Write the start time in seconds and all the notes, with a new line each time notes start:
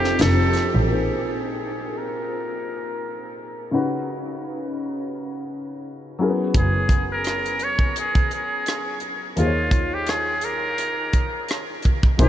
Already playing: F3 C4 D#4 G4 A4
0.04 snare
0.19 F1 A4, snare, closed hi-hat
0.53 snare, closed hi-hat
0.75 A1
0.89 A#2 A#3 D#4 G#4 C5
1.97 A#4
3.71 C#3 C#4 D#4 F#4 B4
6.19 F#3 C#4 E4 G#4
6.23 A#4
6.29 B3
6.54 F#1 G#4, kick, closed hi-hat
6.89 kick, cross-stick, closed hi-hat
7.12 A#4
7.24 cross-stick, closed hi-hat
7.46 closed hi-hat
7.59 closed hi-hat
7.64 C#5
7.79 kick
7.96 G#4, closed hi-hat
8.15 kick, closed hi-hat
8.31 G#4, closed hi-hat
8.66 cross-stick, closed hi-hat
9.00 closed hi-hat
9.36 D#2 D#3 D#4 F4 G#4, closed hi-hat
9.40 C5
9.47 C#5
9.71 kick, closed hi-hat
9.94 G4
10.07 G#4, cross-stick, closed hi-hat
10.41 A#4, closed hi-hat
10.78 closed hi-hat
11.13 kick, closed hi-hat
11.49 cross-stick, closed hi-hat
11.82 kick, cross-stick, closed hi-hat
12.03 kick
12.19 A#1 A#2 C3 G#3 A#3 D#4 F4 G#4 C5, kick, closed hi-hat